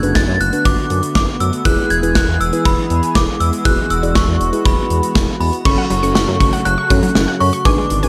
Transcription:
Already playing: D3 A3 B3 F#4 G#6
0.03 F#1 D4 F#4 B4, closed hi-hat
0.15 F#1 A6, kick, snare
0.28 F#2
0.40 F#1 F#6, closed hi-hat
0.53 D4 F#4 B4, closed hi-hat
0.65 F#1 D6, kick, closed hi-hat
0.90 F#2, closed hi-hat
1.03 closed hi-hat
1.15 F#1 D6, kick, snare
1.40 F#2 E6, closed hi-hat
1.53 closed hi-hat
1.65 E1 E3 G#3 E4 G#4 B4 F#6, kick, closed hi-hat
1.90 E1 G#6, closed hi-hat
2.03 E1 E4 G#4 B4, closed hi-hat
2.15 E1 F#6, kick, snare
2.28 E2
2.40 E1 E6, closed hi-hat
2.53 E4 G#4 B4, closed hi-hat
2.65 E1 B5, kick, closed hi-hat
2.90 E2, closed hi-hat
3.03 closed hi-hat
3.15 E1 D6, kick, snare
3.40 E2 E6, closed hi-hat
3.53 closed hi-hat
3.65 E1 E4 F#4 G#4 B4 F#6, kick, closed hi-hat
3.90 E1 E6, closed hi-hat
4.03 E1 E4 G#4 D5, closed hi-hat
4.15 E1 C#6, kick, snare
4.28 E2
4.40 E1, closed hi-hat
4.53 E4 G#4 B4, closed hi-hat
4.65 E1 B5, kick, closed hi-hat
4.90 E2, closed hi-hat
5.03 closed hi-hat
5.15 E1, kick, snare
5.40 E2 B5, open hi-hat
5.53 closed hi-hat
5.65 F#1 C#3 F#3 A3 C#4 F#4 A4 C#6, kick, crash
5.78 F#5
5.90 F#1 F#3, closed hi-hat
6.03 F#1 C#4 F#4 A4 C#6, closed hi-hat
6.15 F#1 F#5 C#6, snare
6.28 F#2 F#3
6.40 F#1 C#6, kick, closed hi-hat
6.53 F#5, closed hi-hat
6.65 F#1 F#3 F#6, closed hi-hat
6.78 C#6
6.90 F#2 C#4 F#4 A4, kick, closed hi-hat
7.03 F#3, closed hi-hat
7.15 F#1 C#6, snare
7.28 F#5
7.40 F#2 F#3 C#6, open hi-hat
7.53 C#6, closed hi-hat
7.65 G#1 B2 D3 G#3 D4 G#4 B4 G#5 D6, kick, closed hi-hat
7.78 G#3
7.90 G#1, closed hi-hat
8.03 G#1 D4 G#4 B4 G#5, closed hi-hat

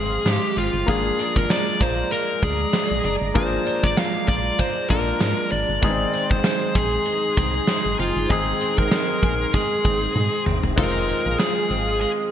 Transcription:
Already playing: G#1 D#3 G#3 C4 D#4 G#4 F5 C6
0.12 closed hi-hat
0.25 G#2 G#3 G4, snare, closed hi-hat
0.57 G#1 C4 F4, closed hi-hat
0.74 G1
0.86 G#1 F3 A#3 D4 F4 G#4 D5 A#5, kick, closed hi-hat
1.19 D4, closed hi-hat
1.36 G#1 A#4, kick
1.50 G#3 D5, snare, closed hi-hat
1.80 A#1 F4 C5, kick, closed hi-hat
2.11 G#3 A#4, closed hi-hat
2.43 D2 D4 G#4, kick, closed hi-hat
2.73 G#3, snare, closed hi-hat
2.91 A#1
3.04 F#1 D4 G#4, closed hi-hat
3.22 G1
3.34 G#1 F3 A#3 D4 F4 G#4 C5, kick, closed hi-hat
3.66 D4, closed hi-hat
3.83 G#1 D5, kick
3.97 G#3 F5, snare, closed hi-hat
4.28 A#1 F4 D5, kick, closed hi-hat
4.59 G#3 C5, kick, closed hi-hat
4.90 A#1 A#3 D4 F4 A#4, kick, closed hi-hat
5.07 closed hi-hat
5.20 G#2 G#3, snare, closed hi-hat
5.52 G#1 D4 D5, closed hi-hat
5.69 G1
5.82 G#1 D#3 G#3 B3 D#4 G#4 C6, kick, closed hi-hat
5.89 C4
6.14 C4, closed hi-hat
6.31 G#1 C5, kick
6.44 G#3, snare, closed hi-hat
6.75 A#1 G#4, kick, closed hi-hat
7.06 G#3, closed hi-hat
7.37 C2 C4 G#4, kick, closed hi-hat
7.54 closed hi-hat
7.67 G#3, snare, closed hi-hat
7.85 G#1
7.99 F#1 C4 F4, closed hi-hat
8.16 G1
8.29 G#1 D#3 G#3 C4 D#4 G#4, kick, closed hi-hat
8.61 C4, closed hi-hat
8.78 G#1 A#4, kick
8.91 G#3, snare, closed hi-hat
9.22 A#1 G#4, kick, closed hi-hat
9.54 G#3 G#4, kick, closed hi-hat
9.85 G#1 C4, kick, closed hi-hat
10.02 closed hi-hat
10.16 G#2 G#3, high tom
10.46 G#1 C4, mid tom
10.63 E1, floor tom
10.76 F1 D#3 G#3 C4 D#4 F4 G#4 A#4 F5 D#6, kick, crash
11.08 G#3, closed hi-hat
11.26 A#1
11.39 G#4, snare, closed hi-hat
11.70 G#1 C4, closed hi-hat
12.00 G#3 G#4, closed hi-hat

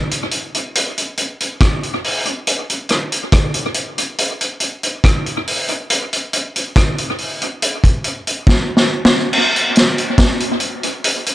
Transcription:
0.11 closed hi-hat
0.31 closed hi-hat
0.55 closed hi-hat
0.75 closed hi-hat
0.98 closed hi-hat
1.18 closed hi-hat
1.40 closed hi-hat
1.61 kick, cross-stick, closed hi-hat
1.83 closed hi-hat
2.04 open hi-hat
2.26 closed hi-hat
2.47 closed hi-hat
2.70 closed hi-hat
2.89 cross-stick, closed hi-hat
3.12 closed hi-hat
3.32 kick, cross-stick, closed hi-hat
3.54 closed hi-hat
3.74 closed hi-hat
3.98 closed hi-hat
4.18 closed hi-hat
4.41 closed hi-hat
4.60 closed hi-hat
4.83 closed hi-hat
5.04 kick, cross-stick, closed hi-hat
5.26 closed hi-hat
5.47 open hi-hat
5.68 closed hi-hat
5.90 closed hi-hat
6.13 closed hi-hat
6.33 closed hi-hat
6.56 closed hi-hat
6.76 kick, cross-stick, closed hi-hat
6.98 closed hi-hat
7.18 open hi-hat
7.42 closed hi-hat
7.62 closed hi-hat
7.84 kick, closed hi-hat
8.04 closed hi-hat
8.27 closed hi-hat
8.47 kick, snare
8.77 snare
9.05 snare
9.33 crash
9.56 closed hi-hat
9.76 snare, closed hi-hat
9.98 closed hi-hat
10.18 kick, snare, closed hi-hat
10.40 closed hi-hat
10.60 closed hi-hat
10.83 closed hi-hat
11.04 closed hi-hat
11.26 closed hi-hat

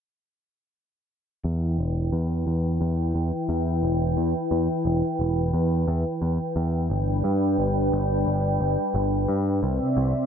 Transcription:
1.44 E2 E3 E4 B4 G5
1.78 E1
2.12 E2
2.47 E2
2.81 E2
3.15 E2
3.49 E2
3.83 E1
4.17 E2
4.51 E2
4.85 E1
5.19 E1
5.53 E2
5.87 E2
6.22 E2
6.56 E2
6.90 G1 G3 D4 B4 G5
7.24 G2
7.58 G1
7.92 G1
8.26 G1
8.60 G1
8.94 G1
9.28 G2
9.62 C2 C3 C4 D5 E5
9.97 C2

